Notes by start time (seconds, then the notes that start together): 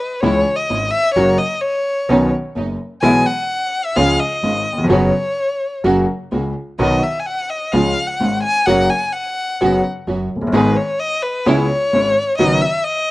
Already playing: B4
0.21 C#2 C#3 E3 G#3 C#4 E4 C#5
0.56 D#5
0.69 G#1 G#2 G#3 C#4 E4
0.91 E5
1.14 F#1 F#2 C#3 F#3 A#3 C#4 F#4 C#5
1.38 D#5
1.61 C#5
2.09 B1 B2 D#3 B3 C#4 D#4 F#4
2.55 F#1 F#2 B3 C#4 D#4
3.02 B1 B2 E3 G#3 B3 E4 G#4 G#5
3.26 F#5
3.85 E5
3.96 C#2 C#3 F3 G#3 C#4 F4 G#4 F5
4.20 D#5
4.43 G#1 G#2 G#3 C#4 F4
4.73 D#2
4.78 E2
4.84 F2
4.89 F#1 F#2 C#3 F#3 B3 C#4 F#4 C#5
5.84 F#1 F#2 C#3 F#3 A#3 C#4 F#4
6.32 C#2 C#3 A#3 C#4 F#4
6.79 B1 B2 D#3 F#3 B3 D#4 F#4 D#5
7.03 E5
7.20 G#5
7.26 F#5
7.50 D#5
7.73 C#2 C#3 F3 G#3 C#4 F4 F5
8.07 F#5
8.20 G#1 G#2 G#3 C#4 F4
8.43 G#5
8.66 F#1 F#2 C#3 F#3 A#3 C#4 F#4 F#5
8.90 G#5
9.13 F#5
9.61 F#1 F#2 C#3 F#3 B3 C#4 F#4
10.07 F#1 F#2 F#3 B3 C#4 F#4
10.36 F1
10.41 F#1
10.47 G1
10.52 G#1 G#2 D#3 G#3 B3 D#4 G#4 B4
10.77 C#5
11.00 D#5
11.23 B4
11.46 C#2 C#3 G#3 B3 C#4 E4 C#5
11.93 G#1 G#2 B3 C#4 E4
12.38 F#1 F#2 D#3 F#3 B3 D#4 F#4 D#5
12.62 E5
12.84 D#5